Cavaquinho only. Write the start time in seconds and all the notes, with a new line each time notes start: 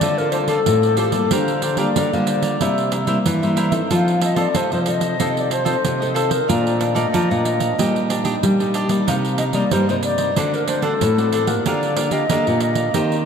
0.02 F4 A4 C5 D5
0.33 F4 A4 C5 D5
0.48 F4 A4 C5 D5
0.84 A4 C5 D5
0.97 F4 A4 C5 D5
1.12 A4 C5 D5
1.31 G4 A#4 D5 F5
1.62 G4 A#4 D5 F5
1.78 G4 A#4 D5 F5
1.96 G4 A#4 D5 F5
2.13 A#4 D5 F5
2.42 A#4 D5 F5
2.61 E4 A#4 C5 E5
2.91 E4 A#4 C5 E5
3.07 E4 A#4 C5 E5
3.42 A#4 C5 E5
3.56 E4 A#4 C5 E5
3.71 A#4 C5 E5
3.90 F4 A4 C5 D#5
4.21 F4 A4 C5 D#5
4.36 F4 A4 C5 D#5
4.54 F4 A4 C5 D#5
4.72 A4 C5 D#5
5.00 A4 C5 D#5
5.19 F4 A4 C5 D#5
5.50 F4 A4 C5 D#5
5.65 F4 A4 C5 D#5
6.00 A4 C5 D#5
6.14 F4 A4 C5 D#5
6.30 A4 C5 D#5
6.48 D5 F5 A#5
6.79 A4 D5 F5 A#5
6.95 A4 D5 F5 A#5
7.13 A4 D5 F5 A#5
7.30 D5 F5 A#5
7.60 D5 F5 A#5
7.79 G4 D#5
8.09 D4 G4 D5 D#5
8.24 D4 G4 D5 D#5
8.59 G4 D5 D#5
8.74 D4 G4 D5 D#5
8.89 G4 D5 D#5
9.07 D#4 A#4 C5 D#5
9.39 D#4 A#4 C5 D#5
9.54 D#4 A#4 C5 D#5
9.73 D#4 A#4 C5 D#5
9.89 A#4 C5 D#5
10.18 A#4 C5 D#5
10.36 D4 C5 D5 F#5
10.68 D4 C5 D5 F#5
10.82 D4 C5 D5 F#5
11.18 C5 D5 F#5
11.32 D4 C5 D5 F#5
11.47 C5 D5 F#5
11.66 G4 A#4 D5 F5
11.97 G4 A#4 D5 F5
12.12 G4 A#4 D5 F5
12.31 G4 A#4 D5 F5
12.47 A#4 D5 F5
12.76 A#4 D5 F5
12.94 D#4 G4 C5 D#5